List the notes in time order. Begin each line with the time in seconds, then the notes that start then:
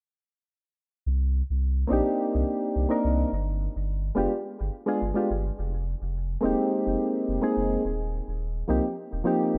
1.06 C2
1.50 C2
1.87 A#1 A#3 C4 D4 D#4
1.93 G4
2.35 C2
2.76 C2
2.89 A#3 C4 D4 D#4 A#4
3.04 C2
3.32 G1
3.76 G1
4.15 F1 G#3 B3 D4 F4 G4
4.61 G1
4.86 G#3 B3 D4 F4 G#4
5.02 G1
5.14 G#3 B3 D4 F4 G4
5.31 G1
5.59 F1
6.02 F1
6.41 D#1 G#3 A#3 C4 D#4
6.45 G4
6.87 F1
7.28 F1
7.41 G#3 A#3 C4 D#4 G#4
7.57 F1
7.85 D#1
8.28 D#1
8.68 C2 F3 A#3 C4 D#4 G4
9.13 D#1
9.24 F3 A#3 C4 D#4 G4
9.54 D#1